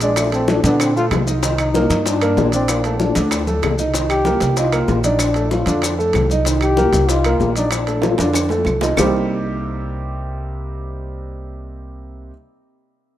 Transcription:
Already playing: A#1
0.00 G#3 D4 D5, high bongo, high timbale, maracas
0.16 A3, high bongo, high conga, high timbale, claves, maracas
0.32 A3 C4 A4, high bongo, high conga, high timbale, maracas
0.48 D4, high bongo, high conga, maracas
0.64 A#2 D3 B3 D4, high bongo, high conga, high timbale, maracas
0.80 C4, high bongo, high conga, high timbale, claves, maracas
0.96 A3 F4 A4, high conga, maracas
1.11 C2, high bongo, low bongo, high conga, high timbale, low timbale, claves, maracas
1.27 D#4 D#5, high bongo, high conga, maracas
1.43 D#3 D#4, high bongo, high timbale, maracas
1.58 D#4, high bongo, high conga, high timbale, claves, maracas
1.74 A#3 A#4, high bongo, high conga, maracas
1.90 G2, high bongo, high conga, high timbale, maracas
2.06 D4 D#4 D#5, high bongo, high conga, high timbale, maracas
2.21 A#3 A#4, high conga, high timbale, claves, maracas
2.37 A#1, high bongo, low bongo, high conga, low timbale, maracas
2.52 C4 D4 D5, high bongo, high timbale, maracas
2.68 A#3, high bongo, high conga, high timbale, claves, maracas
2.84 A3 A4, high bongo, high conga, high timbale, maracas
2.99 D4, high bongo, high conga, maracas
3.15 D2 D3 D4, high bongo, high conga, high timbale, maracas
3.31 high bongo, high timbale, claves, maracas
3.47 A3 A4, high conga, maracas
3.62 C2, high bongo, low bongo, high timbale, claves, maracas
3.78 D#4 D#5, high bongo, low conga, maracas
3.94 D#3 D#4, high bongo, high conga, high timbale, maracas
4.09 G4, high bongo, high conga, high timbale, claves, maracas
4.25 A#3 A#4, high bongo, high conga, maracas
4.40 C2, high bongo, high conga, high timbale, maracas
4.56 D#4 F4 D#5, high bongo, high conga, high timbale, maracas
4.72 A#3 A#4, high conga, high timbale, claves, maracas
4.88 A#1, high bongo, low bongo, high conga, low timbale, maracas
5.04 D4 D#4 D5, high bongo, high conga, high timbale, maracas
5.19 D4, high bongo, high conga, high timbale, claves, maracas
5.34 A3 A4, high bongo, high conga, high timbale, maracas
5.51 F4, high bongo, high conga, maracas
5.66 F2 D3 D4, high bongo, high conga, high timbale, maracas
5.82 high bongo, high conga, high timbale, claves, maracas
5.98 A3 A4, high conga, maracas
6.13 C2, high bongo, low bongo, high conga, high timbale, claves, maracas
6.30 D#4 D#5, high bongo, high conga, maracas
6.45 D#3 D#4, high bongo, high conga, high timbale, maracas
6.61 G4, high bongo, high conga, high timbale, claves, maracas
6.77 A#3 A#4, high bongo, high conga, maracas
6.93 C2, high bongo, high conga, high timbale, maracas
7.09 D#4 F4 D#5, high bongo, high conga, high timbale, maracas
7.24 A#3 A#4, high conga, high timbale, claves, maracas
7.40 A#1, high bongo, low bongo, high conga, maracas
7.56 D4 D#4 D5, high bongo, high conga, high timbale, maracas
7.71 D4, high bongo, high conga, high timbale, claves, maracas
7.87 A3 A4, high bongo, high conga, high timbale, maracas
8.02 F4, high bongo, high conga, high timbale, maracas
8.18 F2 D3 D4, high bongo, high conga, high timbale, maracas
8.33 high bongo, high conga, high timbale, claves, maracas
8.49 A3 A4, high bongo, high conga, low timbale, maracas
8.65 C2, high conga, low timbale, claves, maracas
8.81 D#4 D#5, low bongo, low timbale, maracas
8.97 C2 C3 G3 A#3 C4 D#4 G4, low bongo, low conga, low timbale, claves, maracas

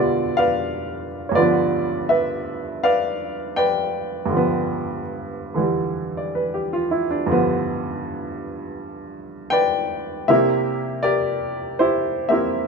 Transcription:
Already playing: G2 B2 D3 F3 G3 B3 F4 B4 D5 E5 F5
0.37 B4 D5 F5
1.29 G2 C#5
1.35 D3 F3 F4 B4 D5
1.42 B3
2.09 B4 E5
2.83 B4 D5 F5
3.56 B4 D5 G5
4.26 G2 D3
4.33 F3 B3
5.54 D3 E3 G3
6.17 D5
6.35 B4
6.54 G4
6.73 F4
6.91 E4
7.11 D4
7.27 G2 D3 F3
7.32 B3
9.50 B4 D5 G5
10.28 C3 G3 A#3 E4 G4 A#4 E5
11.03 G4 A#4 D5
11.79 E4 G4 C5
12.29 A#3 C4 E4 G4 A#4 E5

